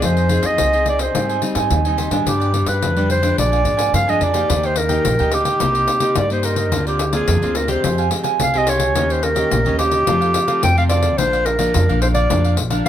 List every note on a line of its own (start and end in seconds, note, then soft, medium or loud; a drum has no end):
0.00 0.38 F2 loud
0.00 0.56 F3 medium
0.00 0.26 C4 medium
0.00 0.26 D#4 medium
0.00 0.15 F4 medium
0.00 0.26 G#4 medium
0.00 0.16 G#4 soft
0.00 0.16 C5 medium
0.00 0.16 D#5 medium
0.00 pandeiro medium
0.05 0.47 C5 medium
0.17 0.28 G#4 medium
0.17 0.29 C5 medium
0.17 0.29 D#5 medium
0.17 pandeiro soft
0.29 0.68 C4 medium
0.29 0.68 D#4 medium
0.29 0.68 G#4 medium
0.29 muted cavaquinho stroke soft
0.29 pandeiro medium
0.42 0.56 F2 medium
0.42 0.57 G#4 medium
0.42 0.57 C5 medium
0.42 0.56 D#5 medium
0.42 0.87 D#5 loud
0.42 pandeiro medium
0.58 1.07 C2 medium
0.58 1.12 C3 medium
0.58 0.71 F4 soft
0.58 0.72 G#4 soft
0.58 0.72 C5 medium
0.58 pandeiro medium
0.73 1.10 C4 medium
0.73 1.11 D#4 medium
0.73 0.99 G#4 medium
0.73 1.11 G#4 medium
0.73 0.98 C5 medium
0.73 0.97 D#5 medium
0.73 pandeiro soft
0.86 1.01 D5 medium
0.86 pandeiro medium
0.99 1.13 G#4 medium
0.99 1.13 C5 medium
0.99 1.53 C5 medium
0.99 1.12 D#5 medium
0.99 pandeiro medium
1.15 1.38 G#2 medium
1.15 1.68 G#2 medium
1.15 1.38 G3 medium
1.15 1.38 C4 medium
1.15 1.39 D#4 medium
1.15 1.28 G4 soft
1.15 1.28 C5 medium
1.15 1.28 D#5 soft
1.15 1.28 G#5 medium
1.15 pandeiro medium
1.29 1.41 C5 medium
1.29 1.41 D#5 medium
1.29 1.42 G#5 medium
1.29 pandeiro soft
1.42 1.79 G3 soft
1.42 1.80 C4 medium
1.42 1.80 D#4 medium
1.42 muted cavaquinho stroke soft
1.42 pandeiro medium
1.55 1.68 G#2 medium
1.55 1.83 C5 medium
1.55 1.83 D#5 medium
1.55 1.83 G#5 medium
1.55 pandeiro medium
1.71 2.06 D#2 medium
1.71 2.24 D#3 soft
1.71 pandeiro medium
1.85 2.09 G3 medium
1.85 2.09 C4 medium
1.85 2.09 D#4 medium
1.85 1.97 C5 medium
1.85 1.97 D#5 medium
1.85 1.97 G#5 medium
1.85 pandeiro soft
1.97 2.11 G4 medium
1.97 2.11 C5 medium
1.97 2.10 D#5 medium
1.97 2.10 G#5 medium
1.97 pandeiro medium
2.11 2.23 G#2 medium
2.11 2.49 G3 medium
2.11 2.49 B3 medium
2.11 2.49 D4 medium
2.11 2.25 C5 soft
2.11 2.25 D#5 soft
2.11 2.24 G#5 soft
2.11 pandeiro medium
2.26 2.62 G2 loud
2.26 2.80 G2 medium
2.26 2.39 D4 soft
2.26 2.39 G4 soft
2.26 2.70 G4 medium
2.26 2.40 B4 soft
2.26 2.39 D5 medium
2.26 pandeiro medium
2.40 2.53 G4 soft
2.40 2.53 B4 medium
2.40 2.53 D5 medium
2.40 pandeiro soft
2.54 2.92 G3 medium
2.54 2.92 B3 medium
2.54 2.92 D4 medium
2.54 muted cavaquinho stroke soft
2.54 pandeiro medium
2.66 2.79 G2 medium
2.66 2.81 G4 soft
2.66 2.80 B4 medium
2.66 3.10 B4 medium
2.66 2.80 D5 medium
2.66 pandeiro medium
2.82 3.30 F2 medium
2.82 3.35 D3 medium
2.82 2.95 D4 soft
2.82 2.95 G4 soft
2.82 2.95 B4 soft
2.82 2.96 D5 medium
2.82 pandeiro medium
2.97 3.20 G3 medium
2.97 3.20 B3 medium
2.97 3.20 D4 medium
2.97 3.22 G4 medium
2.97 3.22 B4 medium
2.97 3.21 D5 medium
2.97 pandeiro soft
3.10 3.37 C5 loud
3.10 pandeiro medium
3.22 3.60 F3 medium
3.22 3.61 G#3 medium
3.22 3.61 D4 medium
3.22 3.37 G4 medium
3.22 3.36 B4 medium
3.22 3.36 D5 medium
3.22 pandeiro medium
3.37 3.62 A#1 medium
3.37 3.91 A#2 medium
3.37 3.51 D4 soft
3.37 3.51 A#4 medium
3.37 3.90 D5 loud
3.37 3.51 F5 medium
3.37 3.51 G#5 medium
3.37 pandeiro medium
3.52 3.64 A#4 medium
3.52 3.64 F5 medium
3.52 3.64 G#5 medium
3.52 pandeiro soft
3.64 3.90 G#2 medium
3.64 3.91 F3 medium
3.64 3.91 G#3 medium
3.64 3.92 D4 medium
3.64 muted cavaquinho stroke soft
3.64 pandeiro medium
3.77 4.06 A#4 medium
3.77 4.06 F5 medium
3.77 4.05 G#5 medium
3.77 pandeiro medium
3.93 4.46 F2 medium
3.93 4.19 G2 medium
3.93 4.11 F5 loud
3.93 pandeiro medium
4.08 4.31 F3 medium
4.08 4.31 G#3 medium
4.08 4.32 D4 medium
4.08 4.20 A#4 soft
4.08 4.25 D#5 medium
4.08 4.20 F5 medium
4.08 4.20 G#5 medium
4.08 pandeiro soft
4.20 4.46 F2 medium
4.20 4.34 D4 medium
4.20 4.33 A#4 medium
4.20 4.68 D5 loud
4.20 4.33 F5 medium
4.20 4.32 G#5 medium
4.20 pandeiro medium
4.33 4.72 A#3 medium
4.33 4.72 D#4 medium
4.33 4.72 G4 medium
4.33 4.48 A#4 soft
4.33 4.47 F5 soft
4.33 4.47 G#5 soft
4.33 pandeiro medium
4.49 4.97 D#2 loud
4.49 5.03 D#3 medium
4.49 4.62 G4 medium
4.49 4.62 A#4 medium
4.49 4.62 D#5 medium
4.49 4.63 G5 medium
4.49 pandeiro medium
4.63 4.75 A#4 medium
4.63 4.79 C5 medium
4.63 4.76 D#5 medium
4.63 4.76 G5 medium
4.63 pandeiro soft
4.76 5.35 A#4 loud
4.76 muted cavaquinho stroke soft
4.76 pandeiro medium
4.89 5.14 A#3 medium
4.89 5.14 D#4 medium
4.89 5.14 G4 medium
4.89 5.04 A#4 soft
4.89 5.03 D#5 medium
4.89 5.03 G5 medium
4.89 pandeiro medium
5.05 5.17 A#1 loud
5.05 5.58 A#2 medium
5.05 5.18 G4 medium
5.05 5.18 A#4 medium
5.05 5.18 D#5 medium
5.05 5.19 G5 medium
5.05 pandeiro medium
5.19 5.55 D2 medium
5.19 5.57 A#3 medium
5.19 5.57 D#4 medium
5.19 5.57 G4 medium
5.19 5.45 A#4 medium
5.19 5.45 D#5 medium
5.19 5.44 G5 medium
5.19 pandeiro soft
5.32 6.17 G4 loud
5.32 pandeiro medium
5.45 5.60 A#4 medium
5.45 5.59 D#5 medium
5.45 5.59 G5 medium
5.45 pandeiro medium
5.60 5.84 C2 medium
5.60 6.14 C3 medium
5.60 5.98 A#3 medium
5.60 5.74 D#4 medium
5.60 5.98 D#4 medium
5.60 5.99 G4 medium
5.60 5.74 A#4 medium
5.60 5.74 C5 medium
5.60 5.73 D#5 medium
5.60 pandeiro medium
5.75 5.87 A#4 medium
5.75 5.87 C5 medium
5.75 5.88 D#5 medium
5.75 pandeiro soft
5.88 muted cavaquinho stroke soft
5.88 pandeiro medium
6.00 6.25 A#3 medium
6.00 6.25 D#4 medium
6.00 6.26 G4 medium
6.00 6.29 A#4 medium
6.00 6.29 C5 medium
6.00 6.28 D#5 medium
6.00 pandeiro medium
6.15 6.73 G2 medium
6.15 6.70 G2 medium
6.15 6.30 D5 loud
6.15 pandeiro medium
6.30 6.68 A#3 medium
6.30 6.69 D#4 medium
6.30 6.69 G4 medium
6.30 6.43 A#4 medium
6.30 6.43 C5 medium
6.30 6.46 C5 medium
6.30 6.44 D#5 medium
6.30 pandeiro soft
6.43 6.57 D#4 medium
6.43 6.57 A#4 medium
6.43 6.87 A#4 loud
6.43 6.56 C5 medium
6.43 6.56 D#5 medium
6.43 pandeiro medium
6.56 6.71 A#4 soft
6.56 6.71 C5 soft
6.56 6.71 D#5 medium
6.56 pandeiro medium
6.72 7.20 D2 loud
6.72 7.25 D3 medium
6.72 6.98 A#3 medium
6.72 6.99 C4 medium
6.72 6.85 D4 medium
6.72 6.99 F4 medium
6.72 6.86 A#4 soft
6.72 6.86 C5 soft
6.72 6.86 D5 medium
6.72 pandeiro medium
6.87 7.13 G4 medium
6.87 7.00 A#4 medium
6.87 7.00 C5 medium
6.87 6.99 D5 medium
6.87 pandeiro soft
6.99 pandeiro medium
7.13 7.37 A#3 medium
7.13 7.37 C4 medium
7.13 7.37 F4 medium
7.13 7.57 G#4 medium
7.13 7.27 A#4 medium
7.13 7.27 C5 medium
7.13 7.26 D5 medium
7.13 pandeiro medium
7.28 7.40 F2 loud
7.28 7.81 D3 medium
7.28 7.41 D4 soft
7.28 7.41 A#4 medium
7.28 7.42 C5 medium
7.28 7.41 D5 medium
7.28 pandeiro medium
7.42 7.78 D2 medium
7.42 7.66 A#3 medium
7.42 7.66 C4 medium
7.42 7.66 F4 medium
7.42 7.68 A#4 medium
7.42 7.68 C5 medium
7.42 7.67 D5 medium
7.42 pandeiro soft
7.55 7.70 A#4 medium
7.55 pandeiro medium
7.68 8.06 G#3 medium
7.68 8.06 C4 medium
7.68 8.07 G4 medium
7.68 7.83 A#4 medium
7.68 7.82 C5 medium
7.68 8.10 C5 medium
7.68 7.82 D5 medium
7.68 pandeiro medium
7.83 8.08 F2 medium
7.83 8.37 F3 medium
7.83 7.97 G4 soft
7.83 7.97 C5 medium
7.83 7.97 F5 medium
7.83 7.97 G#5 medium
7.83 pandeiro medium
7.98 8.11 C5 soft
7.98 8.11 F5 medium
7.98 8.11 G#5 medium
7.98 pandeiro soft
8.11 8.49 G#3 medium
8.11 8.49 C4 medium
8.11 8.49 G4 medium
8.11 muted cavaquinho stroke soft
8.11 pandeiro medium
8.23 8.52 C5 medium
8.23 8.52 F5 medium
8.23 8.51 G#5 medium
8.23 pandeiro medium
8.40 8.95 C2 loud
8.40 8.93 C3 medium
8.40 8.59 F5 medium
8.40 pandeiro medium
8.53 8.92 G#3 medium
8.53 8.92 C4 medium
8.53 8.92 G4 medium
8.53 8.66 C5 medium
8.53 8.66 F5 medium
8.53 8.66 G#5 medium
8.53 pandeiro soft
8.58 8.71 D#5 medium
8.66 8.80 G4 medium
8.66 8.80 C5 medium
8.66 9.13 C#5 medium
8.66 8.79 F5 medium
8.66 8.78 G#5 medium
8.66 pandeiro medium
8.79 8.94 C5 soft
8.79 8.94 F5 soft
8.79 8.93 G#5 medium
8.79 pandeiro medium
8.95 9.43 D#2 loud
8.95 9.49 D#3 medium
8.95 9.33 A#3 medium
8.95 9.33 C#4 medium
8.95 9.08 D#4 medium
8.95 9.08 G4 medium
8.95 9.34 G4 medium
8.95 9.09 C#5 medium
8.95 9.08 D#5 medium
8.95 pandeiro medium
9.10 9.21 G4 medium
9.10 9.25 C5 medium
9.10 9.21 C#5 medium
9.10 9.22 D#5 medium
9.10 pandeiro soft
9.22 9.78 A#4 loud
9.22 muted cavaquinho stroke soft
9.22 pandeiro medium
9.35 9.60 A#3 medium
9.35 9.60 C#4 medium
9.35 9.50 G4 medium
9.35 9.61 G4 medium
9.35 9.50 C#5 medium
9.35 9.49 D#5 medium
9.35 pandeiro medium
9.51 9.63 A#1 loud
9.51 10.04 A#2 medium
9.51 9.64 D#4 soft
9.51 9.65 G4 medium
9.51 9.64 C#5 medium
9.51 9.64 D#5 medium
9.51 pandeiro medium
9.65 10.02 D#2 medium
9.65 10.03 A#3 medium
9.65 10.03 C#4 medium
9.65 9.91 G4 medium
9.65 10.04 G4 medium
9.65 9.91 C#5 medium
9.65 9.90 D#5 medium
9.65 pandeiro soft
9.79 10.59 G4 loud
9.79 pandeiro medium
9.91 10.05 G4 medium
9.91 10.05 C#5 medium
9.91 10.05 D#5 medium
9.91 pandeiro medium
10.07 10.31 F2 loud
10.07 10.60 F3 medium
10.07 10.45 A3 medium
10.07 10.45 C4 medium
10.07 10.20 F4 soft
10.07 10.45 F4 medium
10.07 10.20 A4 medium
10.07 10.20 C5 medium
10.07 10.20 F5 medium
10.07 pandeiro medium
10.21 10.33 A4 medium
10.21 10.33 C5 medium
10.21 10.33 F5 medium
10.21 pandeiro soft
10.34 muted cavaquinho stroke soft
10.34 pandeiro medium
10.47 10.72 A3 medium
10.47 10.72 C4 medium
10.47 10.72 F4 medium
10.47 10.76 A4 medium
10.47 10.75 C5 medium
10.47 10.75 F5 medium
10.47 pandeiro medium
10.63 11.19 F2 medium
10.63 11.16 C3 medium
10.63 10.76 G5 loud
10.63 pandeiro medium
10.77 11.14 A3 medium
10.77 11.15 C4 medium
10.77 11.15 F4 medium
10.77 10.89 A4 medium
10.77 10.90 C5 medium
10.77 10.90 F5 medium
10.77 10.84 F5 loud
10.77 pandeiro soft
10.89 11.03 F4 medium
10.89 11.03 A4 medium
10.89 11.03 C5 medium
10.89 11.19 D5 medium
10.89 11.02 F5 medium
10.89 pandeiro medium
11.03 11.17 A4 soft
11.03 11.17 C5 soft
11.03 11.17 F5 soft
11.03 pandeiro medium
11.18 11.66 A#1 loud
11.18 11.72 A#2 medium
11.18 11.56 F3 medium
11.18 11.56 A#3 medium
11.18 11.31 D4 soft
11.18 11.56 D4 medium
11.18 11.32 A#4 medium
11.18 11.47 C5 loud
11.18 11.32 D5 medium
11.18 11.32 F5 medium
11.18 pandeiro medium
11.33 11.45 A#4 medium
11.33 11.46 D5 medium
11.33 11.46 F5 medium
11.33 pandeiro soft
11.46 12.01 A#4 loud
11.46 muted cavaquinho stroke soft
11.46 pandeiro medium
11.59 11.83 F3 medium
11.59 11.84 A#3 medium
11.59 11.84 D4 medium
11.59 11.73 A#4 medium
11.59 11.73 D5 medium
11.59 11.73 F5 medium
11.59 pandeiro medium
11.74 12.27 F2 medium
11.74 11.87 F2 medium
11.74 11.88 D4 soft
11.74 11.88 A#4 soft
11.74 11.88 D5 medium
11.74 11.88 F5 medium
11.74 pandeiro medium
11.89 12.25 A#1 medium
11.89 12.26 F3 medium
11.89 12.26 A#3 medium
11.89 12.27 D4 medium
11.89 12.15 A#4 medium
11.89 12.14 D5 medium
11.89 12.14 F5 medium
11.89 pandeiro soft
12.02 12.08 C5 medium
12.02 pandeiro medium
12.15 12.29 A#4 medium
12.15 12.55 D5 medium
12.15 12.29 D5 medium
12.15 12.29 F5 medium
12.15 pandeiro medium
12.30 12.54 F2 loud
12.30 12.83 A#2 medium
12.30 12.57 F3 medium
12.30 12.57 A#3 medium
12.30 12.43 D4 medium
12.30 12.57 D4 medium
12.30 12.44 A#4 medium
12.30 12.44 D5 medium
12.30 12.44 F5 medium
12.30 pandeiro medium
12.44 12.57 A#4 medium
12.44 12.57 D5 medium
12.44 12.57 F5 medium
12.44 pandeiro soft
12.57 12.83 A#1 medium
12.57 muted cavaquinho stroke soft
12.57 pandeiro medium
12.70 12.88 F3 medium
12.70 12.88 A#3 medium
12.70 12.88 D4 medium
12.70 12.88 A#4 medium
12.70 12.88 D5 medium
12.70 12.88 F5 medium
12.70 pandeiro medium